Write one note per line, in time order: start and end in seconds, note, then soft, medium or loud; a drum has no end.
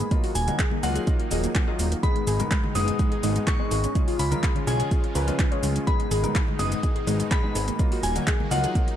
0.00 0.26 B5 medium
0.11 3.92 D#3 medium
0.11 0.29 F#3 medium
0.11 0.29 A#3 medium
0.11 0.18 A#3 medium
0.11 2.02 A#3 medium
0.11 0.29 D#4 medium
0.11 2.01 D#4 loud
0.11 0.29 F4 medium
0.11 kick loud
0.11 closed hi-hat medium
0.11 shaker soft
0.24 0.30 F#4 loud
0.24 open hi-hat medium
0.35 0.51 D#1 medium
0.35 0.42 A#3 medium
0.35 0.79 G#5 medium
0.35 open hi-hat loud
0.35 shaker medium
0.48 0.58 F#3 medium
0.48 0.58 A#3 medium
0.48 0.54 A#3 medium
0.48 0.58 D#4 medium
0.48 0.58 F#4 medium
0.48 closed hi-hat medium
0.48 high bongo medium
0.48 high conga loud
0.48 low conga loud
0.48 shaker soft
0.59 0.65 G#4 loud
0.59 kick loud
0.59 clap loud
0.59 closed hi-hat medium
0.59 shaker soft
0.71 0.78 A#3 medium
0.71 high conga loud
0.71 low conga medium
0.83 0.99 C#2 medium
0.83 1.01 F#3 loud
0.83 1.01 A#3 medium
0.83 0.89 A#3 medium
0.83 1.01 D#4 medium
0.83 1.01 F4 loud
0.83 1.94 F#5 medium
0.83 open hi-hat loud
0.83 shaker medium
0.95 1.01 G#4 medium
0.95 closed hi-hat medium
0.95 shaker soft
1.07 1.19 F#3 medium
1.07 1.13 A#3 medium
1.07 1.19 A#3 medium
1.07 1.19 D#4 medium
1.07 1.19 F4 loud
1.07 kick loud
1.07 closed hi-hat medium
1.07 shaker soft
1.20 1.25 A#3 medium
1.20 closed hi-hat soft
1.31 1.47 D#1 loud
1.31 1.65 F3 medium
1.31 1.65 F#3 medium
1.31 1.65 A#3 medium
1.31 1.65 D#4 medium
1.31 1.38 G#4 loud
1.31 open hi-hat loud
1.31 shaker medium
1.43 1.50 A#3 medium
1.43 closed hi-hat soft
1.43 high conga medium
1.43 shaker soft
1.55 1.62 A#3 medium
1.55 kick loud
1.55 clap loud
1.55 closed hi-hat medium
1.55 shaker soft
1.68 1.85 F#3 medium
1.68 1.85 A#3 medium
1.68 1.85 D#4 medium
1.68 1.85 F4 loud
1.68 1.73 G#4 medium
1.79 1.95 D#1 medium
1.79 1.86 A#3 medium
1.79 open hi-hat loud
1.79 high conga loud
1.79 shaker medium
1.92 1.98 A#3 medium
1.92 closed hi-hat medium
1.92 shaker soft
2.03 2.21 G#2 medium
2.03 3.93 B2 medium
2.03 7.75 G#3 medium
2.03 2.21 G#3 medium
2.03 2.21 B3 medium
2.03 2.21 D#4 medium
2.03 3.93 D#4 medium
2.03 2.09 G#4 loud
2.03 2.21 G#4 medium
2.03 2.66 B5 loud
2.03 kick loud
2.03 closed hi-hat medium
2.03 shaker soft
2.16 2.21 G#3 medium
2.16 closed hi-hat soft
2.27 2.43 G#1 loud
2.27 2.33 G#4 medium
2.27 open hi-hat loud
2.27 shaker medium
2.40 2.50 G#2 medium
2.40 2.45 G#3 medium
2.40 2.50 G#3 medium
2.40 2.50 B3 medium
2.40 2.50 D#4 medium
2.40 2.50 A#4 medium
2.40 closed hi-hat medium
2.40 high bongo medium
2.40 high conga loud
2.40 low conga medium
2.40 shaker soft
2.51 2.57 G#3 medium
2.51 kick loud
2.51 clap loud
2.51 closed hi-hat medium
2.51 shaker soft
2.63 2.69 G#3 medium
2.63 high conga medium
2.63 low conga medium
2.75 2.91 F#1 medium
2.75 2.93 G#2 loud
2.75 2.93 G#3 medium
2.75 2.93 B3 medium
2.75 2.93 D#4 medium
2.75 2.81 G#4 medium
2.75 2.93 G#4 loud
2.75 3.38 D#6 loud
2.75 open hi-hat loud
2.75 shaker medium
2.87 2.93 G#3 medium
2.87 closed hi-hat medium
2.87 shaker soft
2.99 3.11 G#2 medium
2.99 3.05 G#3 medium
2.99 3.11 G#3 medium
2.99 3.11 B3 medium
2.99 3.11 D#4 medium
2.99 3.11 G#4 loud
2.99 kick loud
2.99 closed hi-hat medium
2.99 shaker soft
3.12 3.17 G#4 loud
3.12 closed hi-hat soft
3.23 3.39 G#1 loud
3.23 3.57 G#2 medium
3.23 3.29 G#3 medium
3.23 3.57 G#3 medium
3.23 3.57 B3 medium
3.23 3.57 D#4 medium
3.23 3.57 G#4 medium
3.23 open hi-hat loud
3.23 high bongo medium
3.23 shaker medium
3.35 3.41 G#3 medium
3.35 closed hi-hat soft
3.35 shaker soft
3.47 3.53 G#4 medium
3.47 4.10 C#6 medium
3.47 kick loud
3.47 clap loud
3.47 closed hi-hat medium
3.47 shaker soft
3.60 3.77 G#2 medium
3.60 3.77 G#3 medium
3.60 3.65 G#3 medium
3.60 3.77 B3 medium
3.60 3.77 D#4 medium
3.60 3.77 G#4 loud
3.71 3.87 G#1 medium
3.71 3.77 G#4 loud
3.71 open hi-hat loud
3.71 shaker medium
3.84 3.90 C#4 medium
3.84 closed hi-hat medium
3.84 shaker soft
3.95 4.13 C#3 medium
3.95 5.85 C#3 medium
3.95 5.85 F3 medium
3.95 4.13 G#3 medium
3.95 4.02 C#4 medium
3.95 4.13 C#4 medium
3.95 4.13 F4 medium
3.95 5.85 F4 loud
3.95 4.13 G#4 medium
3.95 kick loud
3.95 closed hi-hat medium
3.95 shaker soft
4.08 4.13 F4 loud
4.08 open hi-hat medium
4.19 4.35 C#2 loud
4.19 4.25 C#4 medium
4.19 4.63 B5 medium
4.19 open hi-hat loud
4.19 shaker medium
4.31 4.42 C#3 medium
4.31 4.42 G#3 medium
4.31 4.37 C#4 medium
4.31 4.42 C#4 medium
4.31 4.42 F4 medium
4.31 4.42 A#4 medium
4.31 closed hi-hat medium
4.31 high bongo medium
4.31 high conga medium
4.31 low conga loud
4.31 shaker soft
4.43 4.49 G#4 loud
4.43 kick loud
4.43 clap loud
4.43 closed hi-hat medium
4.43 shaker soft
4.55 4.61 C#4 medium
4.55 closed hi-hat soft
4.55 high conga loud
4.55 low conga medium
4.67 4.83 B1 medium
4.67 4.85 C#3 loud
4.67 4.85 G#3 medium
4.67 4.73 C#4 medium
4.67 4.85 C#4 medium
4.67 4.85 F4 medium
4.67 4.85 G#4 loud
4.67 5.78 G#5 medium
4.67 open hi-hat loud
4.67 shaker medium
4.80 4.85 G#4 loud
4.80 closed hi-hat medium
4.80 shaker soft
4.91 5.03 C#3 medium
4.91 5.02 G#3 medium
4.91 4.97 C#4 medium
4.91 5.03 C#4 medium
4.91 5.03 F4 medium
4.91 5.03 G#4 medium
4.91 kick loud
4.91 closed hi-hat medium
4.91 shaker soft
5.04 5.10 C#4 medium
5.04 closed hi-hat soft
5.15 5.31 C#2 loud
5.15 5.26 C#3 medium
5.15 5.26 G#3 medium
5.15 5.26 C#4 medium
5.15 5.26 F4 medium
5.15 5.26 A#4 medium
5.15 5.22 B4 medium
5.15 open hi-hat loud
5.15 shaker medium
5.27 5.45 C#3 medium
5.27 5.45 G#3 medium
5.27 5.45 C#4 medium
5.27 5.33 C#4 medium
5.27 5.45 F4 medium
5.27 5.45 B4 medium
5.27 closed hi-hat soft
5.27 high bongo medium
5.27 high conga medium
5.27 shaker soft
5.39 kick loud
5.39 clap loud
5.39 closed hi-hat medium
5.39 shaker soft
5.51 5.84 C#3 medium
5.51 5.84 G#3 medium
5.51 5.84 C#4 medium
5.51 5.84 F4 medium
5.51 5.84 G#4 medium
5.51 5.57 C#5 medium
5.51 closed hi-hat soft
5.63 5.79 C#2 medium
5.63 5.69 C#4 medium
5.63 open hi-hat loud
5.63 high conga medium
5.63 shaker medium
5.76 5.81 C#4 medium
5.76 closed hi-hat soft
5.76 shaker soft
5.87 6.05 G#2 medium
5.87 7.77 B2 medium
5.87 8.96 D#3 medium
5.87 6.05 G#3 medium
5.87 6.05 B3 medium
5.87 6.05 D#4 medium
5.87 7.77 D#4 medium
5.87 6.05 G#4 medium
5.87 5.93 G#4 loud
5.87 6.50 B5 medium
5.87 kick loud
5.87 closed hi-hat medium
5.87 shaker soft
6.00 6.05 G#3 medium
6.00 closed hi-hat soft
6.11 6.27 G#1 loud
6.11 6.17 G#4 loud
6.11 open hi-hat loud
6.11 shaker medium
6.23 6.34 G#2 medium
6.23 6.34 G#3 medium
6.23 6.30 G#3 medium
6.23 6.34 B3 medium
6.23 6.34 D#4 medium
6.23 6.34 A#4 medium
6.23 closed hi-hat soft
6.23 high bongo medium
6.23 high conga medium
6.23 low conga medium
6.23 shaker soft
6.35 kick loud
6.35 clap loud
6.35 closed hi-hat medium
6.35 shaker soft
6.47 6.54 G#3 medium
6.47 high conga medium
6.47 low conga medium
6.59 6.75 F#1 medium
6.59 6.77 G#2 medium
6.59 6.77 G#3 medium
6.59 6.77 B3 medium
6.59 6.77 D#4 medium
6.59 6.77 G#4 loud
6.59 6.66 G#4 medium
6.59 7.22 D#6 medium
6.59 open hi-hat loud
6.59 shaker medium
6.72 6.78 G#3 medium
6.72 closed hi-hat medium
6.72 shaker soft
6.83 6.95 G#2 medium
6.83 6.94 G#3 medium
6.83 6.90 G#3 medium
6.83 6.94 B3 medium
6.83 6.95 D#4 medium
6.83 6.95 G#4 loud
6.83 kick loud
6.83 closed hi-hat medium
6.83 shaker soft
6.96 7.01 G#4 loud
6.96 closed hi-hat soft
7.07 7.23 G#1 medium
7.07 7.41 G#2 medium
7.07 7.41 G#3 medium
7.07 7.14 G#3 medium
7.07 7.41 B3 medium
7.07 7.41 D#4 medium
7.07 7.41 G#4 medium
7.07 open hi-hat loud
7.07 high bongo medium
7.07 shaker medium
7.20 7.25 G#3 medium
7.20 closed hi-hat soft
7.20 shaker soft
7.31 7.37 G#4 medium
7.31 7.94 B5 medium
7.31 kick loud
7.31 clap loud
7.31 closed hi-hat medium
7.31 shaker soft
7.43 7.61 G#2 medium
7.43 7.61 G#3 medium
7.43 7.50 G#3 medium
7.43 7.61 B3 medium
7.43 7.61 D#4 medium
7.43 7.61 G#4 medium
7.55 7.71 G#1 medium
7.55 7.61 G#4 medium
7.55 open hi-hat loud
7.55 shaker medium
7.68 7.74 A#3 medium
7.68 closed hi-hat soft
7.68 shaker soft
7.79 7.97 F#3 medium
7.79 7.97 A#3 medium
7.79 7.86 A#3 medium
7.79 8.96 A#3 medium
7.79 7.97 D#4 medium
7.79 8.96 D#4 loud
7.79 7.97 F4 medium
7.79 kick loud
7.79 closed hi-hat medium
7.79 shaker soft
7.92 7.98 F#4 loud
7.92 open hi-hat medium
8.03 8.19 D#1 medium
8.03 8.10 A#3 medium
8.03 8.47 G#5 medium
8.03 open hi-hat loud
8.03 shaker medium
8.15 8.26 F#3 medium
8.15 8.26 A#3 medium
8.15 8.22 A#3 medium
8.15 8.26 D#4 medium
8.15 8.26 F#4 medium
8.15 closed hi-hat medium
8.15 high bongo medium
8.15 high conga loud
8.15 low conga medium
8.15 shaker soft
8.27 8.34 G#4 loud
8.27 kick loud
8.27 clap loud
8.27 closed hi-hat medium
8.27 shaker soft
8.40 8.46 A#3 medium
8.40 high conga loud
8.40 low conga medium
8.51 8.67 C#2 medium
8.51 8.69 F#3 loud
8.51 8.69 A#3 medium
8.51 8.58 A#3 medium
8.51 8.69 D#4 medium
8.51 8.69 F4 loud
8.51 8.96 F#5 medium
8.51 open hi-hat loud
8.51 shaker medium
8.64 8.70 G#4 loud
8.64 closed hi-hat medium
8.64 shaker soft
8.75 8.87 F#3 medium
8.75 8.87 A#3 medium
8.75 8.82 A#3 medium
8.75 8.87 D#4 medium
8.75 8.87 F4 medium
8.75 kick loud
8.75 closed hi-hat medium
8.75 shaker soft
8.88 8.94 A#3 medium
8.88 closed hi-hat soft